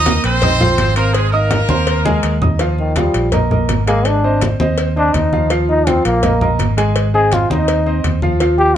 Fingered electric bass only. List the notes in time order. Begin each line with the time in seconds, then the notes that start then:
Already playing: D#2
0.24 A#1
0.78 G#1
1.69 D#2
2.23 D#2
3.14 A#1
3.69 G#1
4.60 D#2
5.14 D#2
6.05 A#1
6.60 G#1
7.50 D#2
8.04 D#2